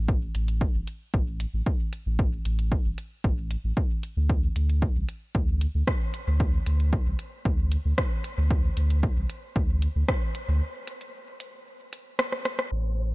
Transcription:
Already playing: sub bass A1
0.09 kick
0.35 sub bass A1, closed hi-hat
0.48 closed hi-hat
0.61 kick
0.75 sub bass G1
0.87 closed hi-hat
1.14 sub bass A1, kick
1.40 closed hi-hat
1.54 sub bass A1
1.66 kick
1.93 closed hi-hat
2.06 sub bass A1
2.19 kick
2.45 sub bass A1, closed hi-hat
2.59 closed hi-hat
2.72 kick
2.85 sub bass G1
2.98 closed hi-hat
3.24 sub bass A1, kick
3.51 closed hi-hat
3.64 sub bass A1
3.77 kick
4.03 closed hi-hat
4.17 sub bass D2
4.30 kick
4.56 sub bass D2, closed hi-hat
4.69 closed hi-hat
4.82 kick
4.96 sub bass C2
5.09 closed hi-hat
5.35 sub bass D2, kick
5.61 closed hi-hat
5.75 sub bass D2
5.87 kick, cross-stick
6.14 closed hi-hat
6.27 sub bass D2
6.40 kick
6.66 sub bass D2, closed hi-hat
6.80 closed hi-hat
6.93 kick
7.06 sub bass C2
7.19 closed hi-hat
7.45 sub bass D2, kick
7.72 closed hi-hat
7.85 sub bass D2
7.98 kick, cross-stick
8.24 closed hi-hat
8.38 sub bass D2
8.51 kick
8.77 sub bass D2, closed hi-hat
8.90 closed hi-hat
9.03 kick
9.17 sub bass C2
9.30 closed hi-hat
9.56 sub bass D2, kick
9.82 closed hi-hat
9.96 sub bass D2
10.08 kick, cross-stick
10.35 closed hi-hat
10.48 sub bass D2
10.87 closed hi-hat
11.01 closed hi-hat
11.40 closed hi-hat
11.93 closed hi-hat
12.19 cross-stick
12.32 cross-stick
12.45 cross-stick, closed hi-hat
12.59 cross-stick
12.72 sub bass A1

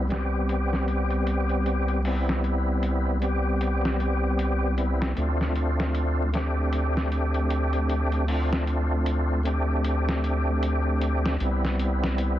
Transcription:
Already playing: analog synth bass C2
0.08 tonewheel organ G3 B3 C4, closed hi-hat
0.12 tonewheel organ G4, snare
0.49 closed hi-hat
0.73 snare
0.88 closed hi-hat
1.10 closed hi-hat
1.27 closed hi-hat
1.49 closed hi-hat
1.66 closed hi-hat
1.88 closed hi-hat
2.03 tonewheel organ G3 B3 C4, open hi-hat
2.07 tonewheel organ E4
2.29 snare
2.44 closed hi-hat
2.83 closed hi-hat
3.20 tonewheel organ G3 B3 C4, closed hi-hat
3.25 tonewheel organ G4
3.61 closed hi-hat
3.85 snare
4.00 closed hi-hat
4.39 closed hi-hat
4.77 tonewheel organ G3 B3 C4 E4, closed hi-hat
5.02 snare
5.15 analog synth bass D2, tonewheel organ A3 C4 D4, closed hi-hat
5.20 tonewheel organ F4
5.41 snare
5.55 closed hi-hat
5.80 snare
5.95 closed hi-hat
6.33 tonewheel organ A3 C4 D4, snare, closed hi-hat
6.37 tonewheel organ G4
6.73 closed hi-hat
6.97 snare
7.12 closed hi-hat
7.34 closed hi-hat
7.50 closed hi-hat
7.73 closed hi-hat
7.89 closed hi-hat
8.12 closed hi-hat
8.27 tonewheel organ A3 C4 D4 F4, open hi-hat
8.53 snare
8.67 closed hi-hat
9.06 closed hi-hat
9.43 tonewheel organ A3 C4 D4, closed hi-hat
9.48 tonewheel organ G4
9.84 closed hi-hat
10.09 snare
10.24 closed hi-hat
10.63 closed hi-hat
11.01 closed hi-hat
11.26 snare
11.39 analog synth bass C2, tonewheel organ G3 B3 C4, closed hi-hat
11.43 tonewheel organ E4
11.65 snare
11.79 closed hi-hat
12.04 snare
12.18 closed hi-hat

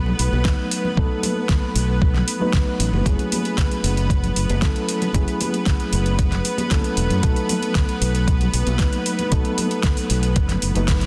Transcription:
Already playing: fingered electric bass B1, reed electric piano F#3 A3 B3 D#4 A4, analog synth pad B3 B4
0.06 low conga
0.19 fingered electric bass B1, open hi-hat
0.32 fingered electric bass B1, high conga
0.45 reed electric piano F#3 A3 B3 D#4 B4, kick, snare
0.71 open hi-hat
0.85 high conga, low conga
0.97 fingered electric bass B1, reed electric piano F#3 A3 B3 D#4 A4, kick
1.23 open hi-hat, high conga, low conga
1.49 kick, snare
1.76 fingered electric bass B1, open hi-hat
2.02 kick
2.14 snare, low conga
2.28 open hi-hat
2.40 reed electric piano F#3 A3 B3 D#4 B4, high conga
2.53 kick, snare
2.80 fingered electric bass A1, open hi-hat
2.93 fingered electric bass F#1, high conga, low conga
3.05 fingered electric bass F#1, reed electric piano F#3 A3 C#4 E4 G#4, analog synth pad B3 B4, kick, closed hi-hat
3.19 closed hi-hat
3.32 open hi-hat, high conga, low conga
3.45 closed hi-hat
3.58 kick, snare, closed hi-hat
3.71 closed hi-hat
3.84 fingered electric bass F#1, open hi-hat
3.97 closed hi-hat
4.10 kick, closed hi-hat
4.24 closed hi-hat, low conga
4.36 fingered electric bass F#1, open hi-hat
4.50 fingered electric bass F#1, closed hi-hat, high conga
4.62 reed electric piano F#3 A3 C#4 E4 A4, kick, snare, closed hi-hat
4.76 closed hi-hat
4.89 open hi-hat
5.02 closed hi-hat, high conga, low conga
5.14 fingered electric bass F#1, reed electric piano F#3 A3 C#4 E4 G#4, kick, closed hi-hat
5.28 closed hi-hat
5.41 open hi-hat, high conga, low conga
5.54 closed hi-hat
5.66 kick, snare, closed hi-hat
5.80 closed hi-hat
5.93 fingered electric bass F#1, open hi-hat
6.06 closed hi-hat
6.19 kick, closed hi-hat
6.32 snare, closed hi-hat, low conga
6.45 open hi-hat
6.58 closed hi-hat, high conga
6.71 reed electric piano F#3 A3 C#4 E4 A4, kick, snare, closed hi-hat
6.84 closed hi-hat
6.97 fingered electric bass E1, open hi-hat
7.10 fingered electric bass F#2, closed hi-hat, high conga, low conga
7.22 fingered electric bass B1, reed electric piano F#3 A3 B3 D#4 A4, kick, closed hi-hat
7.36 closed hi-hat
7.49 open hi-hat, high conga, low conga
7.63 closed hi-hat
7.75 kick, snare, closed hi-hat
7.89 closed hi-hat
8.02 fingered electric bass B1, open hi-hat
8.15 closed hi-hat
8.28 kick, closed hi-hat
8.41 closed hi-hat, low conga
8.54 fingered electric bass B1, open hi-hat
8.67 fingered electric bass B1, closed hi-hat, high conga
8.79 reed electric piano F#3 A3 B3 D#4 B4, kick, snare, closed hi-hat
8.93 closed hi-hat
9.06 open hi-hat
9.19 closed hi-hat, high conga, low conga
9.31 fingered electric bass B1, reed electric piano F#3 A3 B3 D#4 A4, kick, closed hi-hat
9.45 closed hi-hat
9.58 open hi-hat, high conga, low conga
9.71 closed hi-hat
9.83 kick, snare, closed hi-hat
9.97 open hi-hat
10.10 fingered electric bass B1, open hi-hat
10.23 closed hi-hat
10.36 fingered electric bass F#1, kick, closed hi-hat
10.49 snare, closed hi-hat, low conga
10.62 fingered electric bass F#1, open hi-hat
10.75 fingered electric bass F#1, reed electric piano F#3 A3 B3 D#4 B4, closed hi-hat, high conga
10.88 kick, snare, closed hi-hat
11.01 closed hi-hat

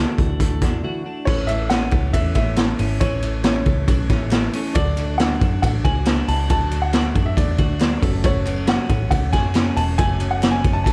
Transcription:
Already playing: steel-string acoustic guitar D3 E3 A3 E4, clean electric guitar E3 A3 D4 F#4, synth keys D4 E4 F#4, upright piano A4
0.00 steel-string acoustic guitar F#4
0.17 picked electric bass D2, steel-string acoustic guitar A3 E4 F#4, kick, closed hi-hat
0.39 steel-string acoustic guitar E3 A3 E4 F#4, kick, closed hi-hat
0.61 picked electric bass E2, steel-string acoustic guitar A3 E4 F#4, clean electric guitar D4, kick, snare, closed hi-hat
0.82 steel-string acoustic guitar D3 E3 A3 E4 F#4
1.04 steel-string acoustic guitar A3 E4 F#4, clean electric guitar D4
1.25 picked electric bass A1, steel-string acoustic guitar A2 E3 A3 C#4 E4 A4, synth keys C#4 E4, upright piano C#5, kick, crash
1.30 synth keys A4
1.47 steel-string acoustic guitar A3 C#4 E4 A4, upright piano E5, clap, ride
1.70 steel-string acoustic guitar A2 E3 A3 C#4 E4 A4, upright piano F#5, snare, clap, ride
1.91 picked electric bass C#2, steel-string acoustic guitar A3 C#4 E4 A4, kick, ride
2.13 picked electric bass E2, clean electric guitar E3, steel-string acoustic guitar A3 C#4 E4 A4, upright piano E5, kick, ride
2.35 picked electric bass A1, steel-string acoustic guitar A3 C#4 E4 A4, upright piano E5, kick, snare, ride
2.57 steel-string acoustic guitar A2 E3 A3 C#4 E4 A4, snare, clap, ride
2.79 picked electric bass G#1, steel-string acoustic guitar A3 C#4 E4 A4, open hi-hat, ride
3.00 picked electric bass A1, steel-string acoustic guitar A2 E3 A3 C#4 E4 A4, upright piano C#5, kick, hi-hat pedal, ride
3.23 steel-string acoustic guitar A3 C#4 E4 A4, clap, ride
3.44 steel-string acoustic guitar A2 E3 A3 C#4 E4 A4, upright piano C#5, snare, clap, ride
3.66 picked electric bass C#2, steel-string acoustic guitar A3 C#4 E4 A4, kick, ride
3.88 picked electric bass B1, clean electric guitar E3, steel-string acoustic guitar A3 C#4 E4 A4, kick, ride
4.10 picked electric bass A1, steel-string acoustic guitar A3 C#4 E4 A4, synth keys E5, kick, snare, ride
4.31 steel-string acoustic guitar A2 E3 A3 C#4 E4 A4, synth keys A5, snare, clap, ride
4.53 synth keys C#4 E4 A4 C#6, steel-string acoustic guitar C#4 E4 A4, open hi-hat, ride
4.57 steel-string acoustic guitar A3
4.73 picked electric bass D2, steel-string acoustic guitar D3 F#3 A3 F#4, synth keys D4 F#4, upright piano D5, kick, hi-hat pedal, ride
4.77 steel-string acoustic guitar D4, synth keys A4
4.97 steel-string acoustic guitar A3 D4 F#4, clap, ride
5.18 steel-string acoustic guitar D3 F#3 A3 D4 F#4, upright piano F#5, snare, clap, ride
5.40 picked electric bass F#2, steel-string acoustic guitar A3 D4 F#4, kick, ride
5.62 picked electric bass A1, steel-string acoustic guitar F#3 A3 D4 F#4, upright piano F#5, kick, ride
5.84 picked electric bass C#2, steel-string acoustic guitar A3 D4 F#4, upright piano G#5, kick, ride
6.06 steel-string acoustic guitar D3 F#3 A3 D4 F#4, snare, clap, ride
6.28 picked electric bass C#2, steel-string acoustic guitar A3 D4 F#4, clean electric guitar E4, upright piano A5, open hi-hat, ride
6.40 clean electric guitar F#4
6.50 picked electric bass D2, steel-string acoustic guitar D3 F#3 A3 D4 F#4, upright piano A5, kick, hi-hat pedal, ride
6.71 steel-string acoustic guitar A3 D4 F#4, clap, ride
6.82 upright piano F#5
6.93 steel-string acoustic guitar D3 F#3 A3 D4 F#4, snare, clap, ride
7.15 picked electric bass F#2, steel-string acoustic guitar A3 D4 F#4, kick, ride
7.26 upright piano E5
7.37 picked electric bass E2, steel-string acoustic guitar F#3 A3 D4 F#4, upright piano D5, kick, ride
7.58 picked electric bass D2, steel-string acoustic guitar A3 D4 F#4, kick, ride
7.80 steel-string acoustic guitar D3 F#3 A3 D4 F#4, snare, clap, ride
8.01 picked electric bass F#1, steel-string acoustic guitar F#3 A3 C#4 F#4, synth keys C#4 F#4 A4, kick, open hi-hat, ride
8.24 steel-string acoustic guitar F#2 C#3 F#3 A3 C#4 F#4, upright piano C#5, kick, hi-hat pedal, ride
8.46 steel-string acoustic guitar A3 C#4 F#4, clean electric guitar B3, clap, ride
8.50 steel-string acoustic guitar F#3
8.56 clean electric guitar C#4
8.67 steel-string acoustic guitar F#2 C#3 F#3 A3 C#4 F#4, upright piano F#5, snare, clap, ride
8.89 picked electric bass A1, steel-string acoustic guitar A3 C#4, kick, ride
8.93 steel-string acoustic guitar F#3
9.11 picked electric bass C#2, steel-string acoustic guitar F#3 A3 C#4, upright piano F#5, kick, ride
9.15 steel-string acoustic guitar F#4
9.33 picked electric bass F#2, steel-string acoustic guitar F#3 A3 C#4 F#4, upright piano G#5, kick, snare, ride
9.55 steel-string acoustic guitar F#2 C#3 F#3 A3 C#4 F#4, snare, clap, ride
9.77 picked electric bass E1, steel-string acoustic guitar F#3 A3 C#4 F#4, upright piano A5, open hi-hat, ride
9.98 picked electric bass F#1, steel-string acoustic guitar F#2 C#3 F#3 A3 C#4 F#4, upright piano G#5, kick, hi-hat pedal, ride
10.20 steel-string acoustic guitar F#3 A3 C#4 F#4, clap, ride
10.31 upright piano F#5
10.43 steel-string acoustic guitar F#2 C#3 F#3 A3 C#4 F#4, snare, clap, ride
10.51 upright piano G#5
10.64 picked electric bass F#1, steel-string acoustic guitar F#3 A3 F#4, clean electric guitar C#4, kick, ride
10.73 upright piano A5
10.84 picked electric bass A1, steel-string acoustic guitar F#3 A3 C#4, upright piano A5, kick, ride
10.89 steel-string acoustic guitar F#4

